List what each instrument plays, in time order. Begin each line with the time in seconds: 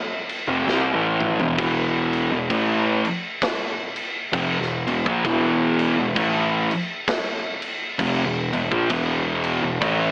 0.29 crash
0.48 picked electric bass F1, distorted electric guitar F2 C3
0.66 picked electric bass C2, distorted electric guitar C3 G3, snare
0.94 picked electric bass A1, distorted electric guitar A2 E3 A3
1.20 mid tom
1.40 picked electric bass E1, distorted electric guitar E2 B2, floor tom
1.58 picked electric bass E1, distorted electric guitar E2 B2 E3, kick, crash
2.13 crash
2.30 picked electric bass E1, distorted electric guitar E2 B2
2.50 picked electric bass A1, distorted electric guitar A2 E3 A3, kick, crash
3.05 crash
3.42 kick, snare, crash
3.96 crash
4.33 picked electric bass F1, distorted electric guitar F2 C3, kick, crash
4.59 picked electric bass E1, distorted electric guitar E2 B2, snare
4.87 picked electric bass E1, distorted electric guitar E2 B2, crash
5.06 picked electric bass A#1, distorted electric guitar A#2 F3, kick
5.24 picked electric bass E1, distorted electric guitar E2 B2 E3, kick, crash
5.79 crash
5.96 picked electric bass E1, distorted electric guitar E2 B2
6.15 picked electric bass A1, distorted electric guitar A2 E3 A3, kick, crash
6.71 crash
7.08 kick, snare, crash
7.62 crash
7.99 picked electric bass F1, distorted electric guitar F2 C3, kick, crash
8.26 picked electric bass E1, distorted electric guitar E2 B2
8.52 picked electric bass E1, distorted electric guitar E2 B2, crash
8.71 picked electric bass A#1, distorted electric guitar A#2 F3, kick
8.90 picked electric bass E1, distorted electric guitar E2 B2 E3, kick, crash
9.44 crash
9.62 picked electric bass E1, distorted electric guitar E2 B2
9.81 picked electric bass A1, distorted electric guitar A2 E3 A3, kick, crash